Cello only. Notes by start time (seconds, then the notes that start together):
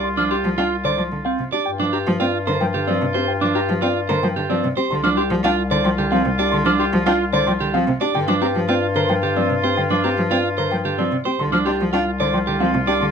0.17 F3
0.44 F3
0.58 D4
0.85 D3
0.98 F3
1.12 D3
1.39 C3
1.53 D4
1.80 F3
2.07 F3
2.21 C4
2.48 D3
2.61 F3
2.74 D3
2.88 F3
3.02 C3
3.15 C4
3.42 F3
3.69 F3
3.82 C4
4.10 D3
4.23 F3
4.37 D3
4.50 F3
4.64 C3
4.77 C4
4.91 D3
5.04 F3
5.31 F3
5.44 D4
5.71 D3
5.85 F3
5.99 D3
6.12 F3
6.25 C3
6.39 D4
6.52 D3
6.66 F3
6.93 F3
7.06 D4
7.33 D3
7.47 F3
7.61 D3
7.74 F3
7.88 C3
8.01 D4
8.15 D3
8.28 F3
8.41 C4
8.55 F3
8.69 C4
8.96 D3
9.09 F3
9.22 D3
9.36 F3
9.50 C3
9.63 C4
9.77 D3
9.90 F3
10.04 C4
10.17 F3
10.31 C4
10.58 D3
10.71 F3
10.85 D3
10.98 F3
11.12 C3
11.25 C4
11.39 D3
11.53 F3
11.66 D4
11.80 F3
11.93 D4
12.20 D3
12.34 F3
12.47 D3
12.61 F3
12.74 C3
12.88 D4
13.01 D3